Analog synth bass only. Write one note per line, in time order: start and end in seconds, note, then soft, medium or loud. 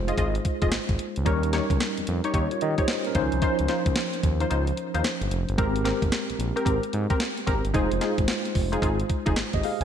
0.00 0.12 F1 medium
0.18 0.39 G#1 loud
0.62 0.70 F1 medium
0.73 0.79 G#1 soft
0.89 0.97 G#1 medium
1.17 1.25 C#2 medium
1.26 1.60 D#2 medium
1.70 1.78 C#2 medium
1.98 2.02 F2 medium
2.08 2.21 F2 loud
2.34 2.47 D#2 loud
2.62 2.75 D#3 medium
3.15 3.29 C#2 loud
3.33 3.41 C2 medium
3.60 3.67 C#2 medium
3.86 3.94 C#2 medium
4.24 4.44 D#2 loud
4.51 4.72 C#2 loud
4.95 5.02 D#2 medium
5.21 5.29 G1 medium
5.31 5.45 F1 medium
5.49 5.57 G1 loud
5.59 5.93 G#1 medium
6.03 6.10 G1 medium
6.29 6.33 A#1 soft
6.39 6.52 A#1 medium
6.66 6.80 G#1 medium
6.94 7.07 G#2 loud
7.48 7.61 G#1 medium
7.65 7.72 G1 medium
7.75 7.88 F1 loud
7.92 7.99 F1 loud
8.18 8.26 G#1 medium
8.55 8.77 F1 medium
8.82 9.04 G#1 loud
9.27 9.35 F1 loud
9.37 9.44 G#1 medium
9.54 9.62 G#1 medium
9.81 9.84 C#2 medium